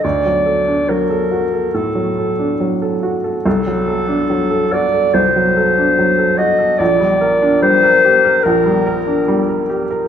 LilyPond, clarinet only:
\new Staff \with { instrumentName = "Clarinet" } { \time 4/4 \key d \phrygian \tempo 4 = 71 d''4 bes'4 a'4. r8 | a'4. d''8 c''4. ees''8 | d''4 c''4 bes'4. r8 | }